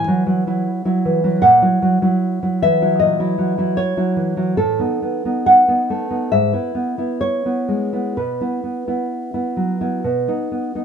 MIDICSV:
0, 0, Header, 1, 2, 480
1, 0, Start_track
1, 0, Tempo, 768246
1, 894, Time_signature, 4, 2, 24, 8
1, 894, Tempo, 789474
1, 2814, Tempo, 873362
1, 4254, Tempo, 943396
1, 6105, End_track
2, 0, Start_track
2, 0, Title_t, "Nylon-string guitar"
2, 0, Program_c, 0, 24
2, 0, Note_on_c, 0, 52, 64
2, 0, Note_on_c, 0, 80, 124
2, 47, Note_on_c, 0, 54, 60
2, 50, Note_on_c, 0, 64, 67
2, 159, Note_off_c, 0, 54, 0
2, 166, Note_on_c, 0, 54, 60
2, 287, Note_off_c, 0, 54, 0
2, 288, Note_off_c, 0, 64, 0
2, 293, Note_on_c, 0, 54, 54
2, 297, Note_on_c, 0, 64, 62
2, 416, Note_off_c, 0, 52, 0
2, 524, Note_off_c, 0, 54, 0
2, 528, Note_off_c, 0, 64, 0
2, 532, Note_on_c, 0, 54, 56
2, 535, Note_on_c, 0, 64, 62
2, 658, Note_on_c, 0, 52, 61
2, 766, Note_off_c, 0, 54, 0
2, 767, Note_off_c, 0, 64, 0
2, 773, Note_on_c, 0, 54, 61
2, 775, Note_on_c, 0, 64, 65
2, 865, Note_off_c, 0, 80, 0
2, 883, Note_off_c, 0, 54, 0
2, 883, Note_off_c, 0, 64, 0
2, 886, Note_on_c, 0, 78, 117
2, 889, Note_off_c, 0, 52, 0
2, 892, Note_on_c, 0, 46, 78
2, 1008, Note_on_c, 0, 54, 57
2, 1009, Note_off_c, 0, 46, 0
2, 1011, Note_on_c, 0, 64, 60
2, 1125, Note_off_c, 0, 54, 0
2, 1132, Note_on_c, 0, 54, 63
2, 1245, Note_off_c, 0, 54, 0
2, 1247, Note_off_c, 0, 64, 0
2, 1252, Note_on_c, 0, 54, 59
2, 1256, Note_on_c, 0, 64, 61
2, 1491, Note_off_c, 0, 64, 0
2, 1492, Note_off_c, 0, 54, 0
2, 1499, Note_on_c, 0, 54, 53
2, 1499, Note_on_c, 0, 64, 57
2, 1587, Note_off_c, 0, 78, 0
2, 1619, Note_on_c, 0, 52, 63
2, 1620, Note_on_c, 0, 76, 112
2, 1728, Note_off_c, 0, 54, 0
2, 1730, Note_off_c, 0, 64, 0
2, 1735, Note_on_c, 0, 54, 54
2, 1738, Note_on_c, 0, 64, 63
2, 1842, Note_off_c, 0, 76, 0
2, 1845, Note_on_c, 0, 75, 110
2, 1851, Note_on_c, 0, 46, 67
2, 1958, Note_off_c, 0, 54, 0
2, 1960, Note_off_c, 0, 64, 0
2, 1964, Note_off_c, 0, 46, 0
2, 1965, Note_on_c, 0, 54, 57
2, 1968, Note_on_c, 0, 64, 63
2, 2073, Note_off_c, 0, 54, 0
2, 2081, Note_on_c, 0, 54, 60
2, 2192, Note_off_c, 0, 54, 0
2, 2197, Note_off_c, 0, 64, 0
2, 2199, Note_on_c, 0, 54, 55
2, 2204, Note_on_c, 0, 64, 60
2, 2301, Note_off_c, 0, 75, 0
2, 2316, Note_on_c, 0, 73, 107
2, 2325, Note_off_c, 0, 52, 0
2, 2431, Note_off_c, 0, 54, 0
2, 2433, Note_off_c, 0, 64, 0
2, 2438, Note_on_c, 0, 54, 54
2, 2441, Note_on_c, 0, 64, 60
2, 2556, Note_on_c, 0, 52, 57
2, 2673, Note_off_c, 0, 54, 0
2, 2677, Note_off_c, 0, 64, 0
2, 2680, Note_on_c, 0, 54, 59
2, 2684, Note_on_c, 0, 64, 58
2, 2790, Note_off_c, 0, 73, 0
2, 2797, Note_off_c, 0, 54, 0
2, 2799, Note_off_c, 0, 64, 0
2, 2804, Note_on_c, 0, 69, 106
2, 2807, Note_off_c, 0, 52, 0
2, 2809, Note_on_c, 0, 45, 76
2, 2926, Note_off_c, 0, 45, 0
2, 2927, Note_on_c, 0, 59, 54
2, 2927, Note_on_c, 0, 63, 62
2, 3046, Note_off_c, 0, 59, 0
2, 3052, Note_on_c, 0, 59, 56
2, 3172, Note_off_c, 0, 59, 0
2, 3175, Note_off_c, 0, 63, 0
2, 3179, Note_on_c, 0, 59, 53
2, 3182, Note_on_c, 0, 63, 56
2, 3282, Note_off_c, 0, 69, 0
2, 3294, Note_on_c, 0, 78, 110
2, 3408, Note_off_c, 0, 59, 0
2, 3411, Note_off_c, 0, 63, 0
2, 3415, Note_on_c, 0, 59, 51
2, 3417, Note_on_c, 0, 63, 52
2, 3534, Note_on_c, 0, 57, 54
2, 3640, Note_off_c, 0, 59, 0
2, 3641, Note_off_c, 0, 63, 0
2, 3647, Note_on_c, 0, 63, 53
2, 3648, Note_on_c, 0, 59, 51
2, 3744, Note_off_c, 0, 78, 0
2, 3753, Note_off_c, 0, 59, 0
2, 3754, Note_off_c, 0, 63, 0
2, 3764, Note_on_c, 0, 76, 98
2, 3766, Note_off_c, 0, 57, 0
2, 3767, Note_on_c, 0, 44, 72
2, 3879, Note_on_c, 0, 59, 53
2, 3880, Note_off_c, 0, 44, 0
2, 3883, Note_on_c, 0, 64, 53
2, 3994, Note_off_c, 0, 59, 0
2, 4000, Note_on_c, 0, 59, 54
2, 4122, Note_off_c, 0, 59, 0
2, 4124, Note_off_c, 0, 64, 0
2, 4128, Note_on_c, 0, 59, 50
2, 4131, Note_on_c, 0, 64, 53
2, 4232, Note_off_c, 0, 76, 0
2, 4253, Note_on_c, 0, 73, 97
2, 4373, Note_off_c, 0, 59, 0
2, 4376, Note_off_c, 0, 64, 0
2, 4380, Note_on_c, 0, 59, 48
2, 4383, Note_on_c, 0, 64, 48
2, 4496, Note_on_c, 0, 56, 51
2, 4615, Note_off_c, 0, 64, 0
2, 4616, Note_off_c, 0, 59, 0
2, 4620, Note_on_c, 0, 64, 50
2, 4623, Note_on_c, 0, 59, 46
2, 4720, Note_off_c, 0, 73, 0
2, 4730, Note_off_c, 0, 59, 0
2, 4730, Note_off_c, 0, 64, 0
2, 4740, Note_off_c, 0, 56, 0
2, 4743, Note_on_c, 0, 47, 65
2, 4743, Note_on_c, 0, 71, 72
2, 4860, Note_off_c, 0, 47, 0
2, 4864, Note_on_c, 0, 59, 45
2, 4867, Note_on_c, 0, 64, 51
2, 4974, Note_off_c, 0, 59, 0
2, 4980, Note_on_c, 0, 59, 46
2, 5095, Note_off_c, 0, 59, 0
2, 5098, Note_off_c, 0, 64, 0
2, 5102, Note_on_c, 0, 59, 45
2, 5104, Note_on_c, 0, 64, 50
2, 5331, Note_off_c, 0, 59, 0
2, 5332, Note_off_c, 0, 64, 0
2, 5338, Note_on_c, 0, 59, 45
2, 5338, Note_on_c, 0, 64, 50
2, 5453, Note_on_c, 0, 54, 50
2, 5570, Note_off_c, 0, 59, 0
2, 5572, Note_off_c, 0, 64, 0
2, 5577, Note_on_c, 0, 59, 44
2, 5577, Note_on_c, 0, 64, 52
2, 5685, Note_off_c, 0, 59, 0
2, 5686, Note_off_c, 0, 64, 0
2, 5696, Note_off_c, 0, 54, 0
2, 5696, Note_on_c, 0, 47, 63
2, 5814, Note_off_c, 0, 47, 0
2, 5816, Note_on_c, 0, 59, 48
2, 5819, Note_on_c, 0, 63, 53
2, 5930, Note_off_c, 0, 59, 0
2, 5937, Note_on_c, 0, 59, 47
2, 6050, Note_off_c, 0, 59, 0
2, 6052, Note_off_c, 0, 63, 0
2, 6056, Note_on_c, 0, 59, 42
2, 6058, Note_on_c, 0, 63, 50
2, 6105, Note_off_c, 0, 59, 0
2, 6105, Note_off_c, 0, 63, 0
2, 6105, Note_off_c, 0, 71, 0
2, 6105, End_track
0, 0, End_of_file